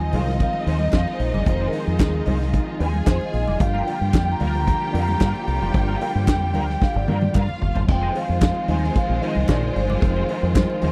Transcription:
Already playing: D#2 D#3 F3 G#3 C4 D#4 F4 D#5 G#5
0.00 muted clean electric guitar stroke
0.12 C2 D#3 F3 G#3 C4 D#4 F4 G#4 C5 F5, open hi-hat, high conga, low conga
0.27 D#3 F3 G3 C4 F4, muted clean electric guitar stroke, snare
0.34 G#3
0.40 F5, muted clean electric guitar stroke, kick, closed hi-hat, muted conga
0.53 muted clean electric guitar stroke, muted conga
0.61 D#5
0.66 D#2 D#4 G#4 C5, open hi-hat
0.79 D#5, muted clean electric guitar stroke, high conga
0.93 F2 D#4 G#4 C5 F5, kick, snare, clap, closed hi-hat, muted conga
1.08 muted clean electric guitar stroke, muted conga
1.14 C5
1.20 A#1, muted clean electric guitar stroke, open hi-hat
1.32 G1 G#4 D5 D#5, high conga, low conga
1.36 D#4
1.45 F1 D#3 F3 G#3 C4 D#4 F4, muted clean electric guitar stroke, kick, closed hi-hat, muted conga
1.50 C5
1.61 D#4 G#4 C5
1.67 A#4
1.72 D#3 F3 G#3 C4 D#4 F4 G#4 C5, open hi-hat
1.85 F2 D#3 F3 G#3 C4 F4 G#4, muted clean electric guitar stroke
1.99 D#2, muted clean electric guitar stroke, kick, snare, clap, closed hi-hat, muted conga, high conga
2.14 muted clean electric guitar stroke, muted conga
2.26 C2 D#4 G#4 C5, open hi-hat, high conga, low conga
2.41 muted clean electric guitar stroke, snare
2.53 muted clean electric guitar stroke, kick, closed hi-hat, muted conga
2.67 muted clean electric guitar stroke
2.79 D#2 D#4 G#4 C5 G#5, open hi-hat
2.94 muted clean electric guitar stroke, high conga
3.06 F2 D#4 G#4 C5, kick, snare, clap, closed hi-hat
3.20 muted clean electric guitar stroke, muted conga
3.25 D#5
3.33 A#1, muted clean electric guitar stroke, open hi-hat
3.43 D#5
3.47 F1 D#4 G#4 D5, high conga, low conga
3.60 G1 D3 F3 G3 A#3 F4 G4 F5 G5, kick, closed hi-hat
3.74 D4 F4 A#4, muted conga
3.78 G5
3.87 D4 F4 A#4, open hi-hat
3.96 G5
4.01 G2, muted clean electric guitar stroke
4.13 F2, muted clean electric guitar stroke, kick, snare, clap, closed hi-hat, muted conga, high conga
4.28 A#5, muted clean electric guitar stroke, muted conga
4.40 D2 D3 F3 G3 A#3 D4 F4 A#4, open hi-hat, high conga, low conga
4.50 A#5
4.54 D3 F3 G3 A#3 F4, muted clean electric guitar stroke
4.67 muted clean electric guitar stroke, kick, closed hi-hat, muted conga
4.81 muted clean electric guitar stroke, muted conga
4.93 F2 D4 F4 A#4, open hi-hat
5.08 muted clean electric guitar stroke, high conga
5.21 G2 D4 F4 A#4, kick, snare, clap, closed hi-hat, muted conga
5.35 muted clean electric guitar stroke, muted conga
5.47 C2, muted clean electric guitar stroke, open hi-hat
5.62 F1 D4 F4 C5, high conga, low conga
5.73 G1 D3 F3 G3 A#3 F4, muted clean electric guitar stroke, kick, closed hi-hat, muted conga
5.88 D4 F4 A#4, muted conga
6.00 D3 F3 G3 A#3 D4 F4 A#4 G5, open hi-hat
6.15 G2 D3 F3 G3 G#3 F4
6.22 A#3
6.27 F2, muted clean electric guitar stroke, kick, snare, clap, closed hi-hat, muted conga, high conga
6.41 muted clean electric guitar stroke
6.53 D2 D4 F4 A#4 G5, open hi-hat, high conga, low conga
6.70 snare
6.80 F5, muted clean electric guitar stroke, kick, snare, muted conga
6.94 G1 D5, muted clean electric guitar stroke, muted conga
7.07 G2 D4 F4 A#4, high tom
7.21 muted clean electric guitar stroke, high tom, high conga
7.34 G2 D4 F4 A#4 F5, kick, clap, mid tom, muted conga
7.49 muted clean electric guitar stroke, muted conga, low conga
7.61 G1, muted clean electric guitar stroke, floor tom
7.75 G1 D4 F4 C5, floor tom, high conga, low conga
7.87 F1 D#3 F3 G#3 C4 F4 C5 G5, muted clean electric guitar stroke, kick, crash
8.01 D#4 G#4 C5
8.14 D#4 G#4 C5 F5, open hi-hat
8.28 F2 D#3 F3 G#3 C4 F4, muted clean electric guitar stroke
8.41 muted clean electric guitar stroke, kick, snare, clap, closed hi-hat, high conga
8.55 muted clean electric guitar stroke, muted conga
8.68 D#2 D#3 F3 G#3 C4 D#4 F4 G#4 C5 G#5, open hi-hat, high conga, low conga
8.83 muted clean electric guitar stroke, snare
8.95 F5, muted clean electric guitar stroke, kick, closed hi-hat, muted conga
9.09 A#1, muted clean electric guitar stroke
9.22 D#3 F3 G#3 C4 D#4 G#4 C5 D#5, open hi-hat
9.35 C2, muted clean electric guitar stroke, high conga
9.48 A#1 D#4 G#4 C5 D5, kick, snare, clap, closed hi-hat, muted conga
9.63 muted clean electric guitar stroke, low conga
9.76 G1 C5, muted clean electric guitar stroke, open hi-hat
9.89 D#3 F3 G#3 C4 D#4 F4 G#4 D5, high conga, low conga
10.01 F1 D#3 F3 G#3 C4 F4, kick, closed hi-hat, muted conga
10.16 D#4 G#4 C5, muted conga
10.29 D#4 G#4 C5, open hi-hat
10.42 F2 D#3 F3 G#3 C4 F4, muted clean electric guitar stroke
10.55 kick, snare, clap, closed hi-hat, muted conga, high conga
10.70 muted clean electric guitar stroke, muted conga
10.82 D#2 D#3 F3 G#3 C4 D#4 F4 G#4 C5, open hi-hat, high conga, low conga

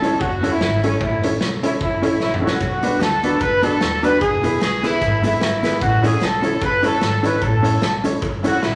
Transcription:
Already playing: C#2 A4
0.02 C#4 E4 A4 C#5, closed hi-hat
0.21 E2 F#4, kick
0.43 C#4 E4 A4 C#5, closed hi-hat
0.52 E4
0.60 G#1, muted clean electric guitar stroke, snare
0.83 C#4 E4 A4 C#5, closed hi-hat
1.01 A1 E4, kick
1.23 C#4 E4 A4 C#5, closed hi-hat
1.41 B1, snare
1.63 C#4 E4 A4 C#5, closed hi-hat
1.81 C#2 E4, kick
2.02 C#4 E4 A4 C#5, closed hi-hat
2.20 A#1 E4, muted clean electric guitar stroke, snare
2.34 mid tom
2.42 C#4 E4 F#4 A4 C#5
2.47 snare
2.60 B1, kick, cabasa
2.82 B3 D4 F#4 B4, closed hi-hat, cabasa
3.00 D2 A4, snare, cabasa
3.23 B3 D4 F#4 B4, closed hi-hat, cabasa
3.40 C#2 B4, kick, cabasa
3.62 B3 D4 F#4 A4 B4, closed hi-hat, cabasa
3.81 D#2, muted clean electric guitar stroke, snare, cabasa
4.03 B3 D4 F#4 B4, closed hi-hat, cabasa
4.20 E1 G#4, kick, cabasa
4.43 B3 E4 G#4 B4, closed hi-hat, cabasa
4.61 B1 G#4, snare, cabasa
4.83 B3 E4 G#4 B4, closed hi-hat, cabasa
5.02 G#1, kick, cabasa
5.23 B3 E4 G#4 B4, closed hi-hat, cabasa
5.41 G#1 E4, muted clean electric guitar stroke, snare, cabasa
5.63 B3 E4 G#4 B4, snare, closed hi-hat, cabasa
5.81 A1 F#4, kick, cabasa
6.03 C#4 E4 G#4 A4 C#5, closed hi-hat, cabasa
6.20 B1 A4, snare, cabasa
6.42 C#4 E4 A4 C#5, closed hi-hat, cabasa
6.61 C#2 B4, kick, cabasa
6.83 C#4 E4 A4 C#5, closed hi-hat, cabasa
7.00 G#1 A4, muted clean electric guitar stroke, snare, cabasa
7.23 C#4 E4 A4 B4 C#5, closed hi-hat, cabasa
7.42 A1 A4, kick, cabasa
7.63 C#4 E4 A4 C#5, closed hi-hat, cabasa
7.81 B1 A4, snare, cabasa
8.04 C#4 E4 A4 C#5, closed hi-hat, cabasa
8.22 C#2, kick, cabasa
8.43 C#4 E4 F#4 A4 C#5, closed hi-hat, cabasa
8.62 A#1 E4, muted clean electric guitar stroke, snare, cabasa

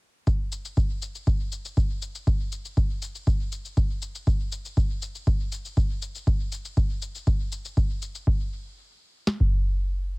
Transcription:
0.27 kick, cabasa
0.52 cabasa
0.65 cabasa
0.77 kick, cabasa
1.02 cabasa
1.15 cabasa
1.27 kick, cabasa
1.52 cabasa
1.65 cabasa
1.77 kick, cabasa
2.02 cabasa
2.15 cabasa
2.27 kick, cabasa
2.52 cabasa
2.65 cabasa
2.77 kick, cabasa
3.02 cabasa
3.15 cabasa
3.27 kick, cabasa
3.52 cabasa
3.65 cabasa
3.77 kick, cabasa
4.02 cabasa
4.15 cabasa
4.27 kick, cabasa
4.52 cabasa
4.65 cabasa
4.77 kick, cabasa
5.02 cabasa
5.15 cabasa
5.27 kick, cabasa
5.52 cabasa
5.65 cabasa
5.77 kick, cabasa
6.02 cabasa
6.15 cabasa
6.27 kick, cabasa
6.52 cabasa
6.65 cabasa
6.77 kick, cabasa
7.02 cabasa
7.15 cabasa
7.27 kick, cabasa
7.52 cabasa
7.65 cabasa
7.77 kick, cabasa
8.02 cabasa
8.15 cabasa
8.27 kick
9.27 snare
9.40 kick

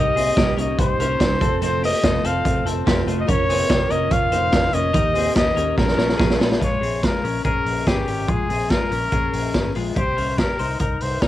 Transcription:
Already playing: C2 C3 G3 A#3 D#4 G4 A#4 D#5
0.00 G4
0.16 A#3 C4 D#4 G4 G#4, hi-hat pedal, open hi-hat
0.37 C2 C3 G3 A#3 D#4 G4, kick, snare, hi-hat pedal, open hi-hat
0.57 C2 A#3 C#4 D#4 G4 A#4 D#5, hi-hat pedal, open hi-hat
0.77 C2 G3 A#3 D#4 G4 C5, kick, hi-hat pedal, open hi-hat
0.81 C5
0.98 C2 A#3 C#4 D#4 G4 A#4, hi-hat pedal, open hi-hat
1.19 C2 C3 G3 A#3 D#4 G4, kick, snare, hi-hat pedal, open hi-hat
1.40 F1 A3 C4 F4 A4, kick, hi-hat pedal, open hi-hat
1.61 F3 A3 C4 F4 A4 C5, hi-hat pedal, open hi-hat
1.81 A3 A#3 C4 F4 G4, hi-hat pedal, open hi-hat
1.85 D#5
2.02 F1 F3 A3 C4 F4, kick, snare, hi-hat pedal, open hi-hat
2.22 F1 A3 C4 F4 A4, hi-hat pedal, open hi-hat
2.26 F5
2.44 F1 F3 A3 C4 F4, kick, hi-hat pedal, open hi-hat
2.65 F1 A3 C4 F4 A4, hi-hat pedal, open hi-hat
2.85 F1 F3 A3 C4 F4 G4, kick, snare, hi-hat pedal, open hi-hat
3.05 F1 A3 C4 F4, hi-hat pedal, open hi-hat
3.21 D#5
3.26 F1 F3 A#3 C#4 F4 A#4, kick, hi-hat pedal, open hi-hat
3.30 C#5
3.47 A#3 C4 C#4 F4 G#4, hi-hat pedal, open hi-hat
3.68 F1 F3 A#3 C#4 F4 G4, kick, snare, hi-hat pedal, open hi-hat
3.88 F1 A#3 C#4 F4 A#4 D#5, hi-hat pedal, open hi-hat
4.09 F1 F3 A#3 C#4 F4 C#5 F5, kick, hi-hat pedal, open hi-hat
4.32 F1 A#3 C#4 D#4 C5, hi-hat pedal, open hi-hat
4.52 F1 F3 A#3 C#4 F4, kick, snare, hi-hat pedal, open hi-hat
4.72 F1 A#3 C#4 F4 A#4 D#5, hi-hat pedal, open hi-hat
4.93 D#2 D#3 A#3 D#4 G4 A#4, kick, hi-hat pedal, open hi-hat
5.14 A#3 C4 D#4 G4 G#4, hi-hat pedal, open hi-hat
5.35 D#2 D#3 A#3 D#4 G4 D#5, kick, snare, hi-hat pedal, open hi-hat
5.56 D#2 A#3 C#4 D#4 G4 A#4, hi-hat pedal, open hi-hat
5.77 A#1 F3 G#3 C#4 F4 A#4, kick, snare
5.88 snare
5.98 A#1 G#3 C#4 F4 A#4, snare
6.09 snare
6.18 A#1 A#2 F3 G#3 C#4 F4 G#4, kick, snare
6.30 snare
6.39 A#1 G#3 C#4 F4, snare
6.52 snare
6.60 A#1 G#3 F4 C#5, kick, closed hi-hat
6.80 A#1 C4 G#4, open hi-hat
7.02 G#3 F4 A#4, kick, snare, closed hi-hat
7.23 A#1 C#4 A#4, open hi-hat
7.45 A#1 C#4 G#4 A#4, kick, closed hi-hat
7.65 A#1, open hi-hat
7.87 G#1 C#4 G4 G#4, kick, snare, closed hi-hat
8.07 G#1 C#4 A#4, open hi-hat
8.28 A#1 G#3 F4 G#4, kick, closed hi-hat
8.49 A#1 C4 G#4, open hi-hat
8.70 G#3 F4 A#4, kick, snare, closed hi-hat
8.91 A#1 C#4 A#4, open hi-hat
9.12 A#1 C#4 G#4, kick, closed hi-hat
9.33 A#1, open hi-hat
9.54 G#1, kick, snare, closed hi-hat
9.75 A#1 G#3 F4, open hi-hat
9.96 C2 A#3 G4 C5, kick, closed hi-hat
10.16 C2 C#4 A#4, open hi-hat
10.38 A#3 G4 A#4, kick, snare, closed hi-hat
10.59 C2 D#4 C5, open hi-hat
10.79 C2 D#4 A#4, kick, closed hi-hat
11.00 C2 C5, open hi-hat
11.22 A#1 D#4 A#4, kick, snare, closed hi-hat

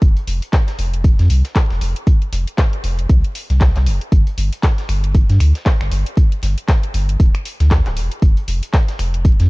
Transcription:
0.02 F1, kick, closed hi-hat
0.17 closed hi-hat
0.27 F1, closed hi-hat, open hi-hat
0.42 closed hi-hat
0.53 kick, snare, clap, closed hi-hat
0.68 snare, closed hi-hat
0.79 F1, closed hi-hat, open hi-hat
0.94 closed hi-hat
1.04 kick, closed hi-hat
1.19 F2, snare, closed hi-hat
1.30 C2, closed hi-hat, open hi-hat
1.45 snare, closed hi-hat
1.56 kick, snare, clap, closed hi-hat
1.70 F1, snare
1.81 F1, closed hi-hat, open hi-hat
1.96 closed hi-hat
2.07 kick, closed hi-hat
2.22 closed hi-hat
2.33 F1, snare, closed hi-hat, open hi-hat
2.47 closed hi-hat
2.58 kick, snare, clap, closed hi-hat
2.73 closed hi-hat
2.84 F1, closed hi-hat, open hi-hat
2.99 closed hi-hat
3.09 C2, kick, closed hi-hat
3.24 closed hi-hat
3.35 closed hi-hat, open hi-hat
3.50 C2, snare, closed hi-hat
3.61 kick, snare, clap, closed hi-hat
3.76 C2, snare, clap, closed hi-hat
3.86 F1, closed hi-hat, open hi-hat
4.01 closed hi-hat
4.12 G1, kick, closed hi-hat
4.27 closed hi-hat
4.38 G1, closed hi-hat, open hi-hat
4.53 closed hi-hat
4.63 kick, snare, clap, closed hi-hat
4.78 snare, closed hi-hat
4.89 G1, finger snap, closed hi-hat, open hi-hat
5.04 closed hi-hat
5.15 kick, closed hi-hat
5.29 G2, snare, closed hi-hat
5.40 D2, finger snap, closed hi-hat, open hi-hat
5.55 snare, closed hi-hat
5.66 kick, snare, clap, closed hi-hat
5.81 G1, finger snap, snare
5.91 G1, closed hi-hat, open hi-hat
6.06 closed hi-hat
6.17 kick, closed hi-hat
6.32 closed hi-hat
6.43 G1, snare, closed hi-hat, open hi-hat
6.58 closed hi-hat
6.68 kick, snare, clap, closed hi-hat
6.83 closed hi-hat
6.94 G1, closed hi-hat, open hi-hat
7.09 closed hi-hat
7.20 D1, kick, closed hi-hat
7.35 finger snap, closed hi-hat
7.45 closed hi-hat, open hi-hat
7.60 D2, snare, closed hi-hat
7.71 kick, snare, clap, closed hi-hat
7.86 D1, snare, clap, closed hi-hat
7.97 F1, closed hi-hat, open hi-hat
8.12 closed hi-hat
8.22 F1, kick, closed hi-hat
8.37 closed hi-hat
8.48 F1, closed hi-hat, open hi-hat
8.63 closed hi-hat
8.74 kick, snare, clap, closed hi-hat
8.88 snare, closed hi-hat
8.99 F1, finger snap, closed hi-hat, open hi-hat
9.14 closed hi-hat
9.25 kick, closed hi-hat
9.40 F2, snare, closed hi-hat

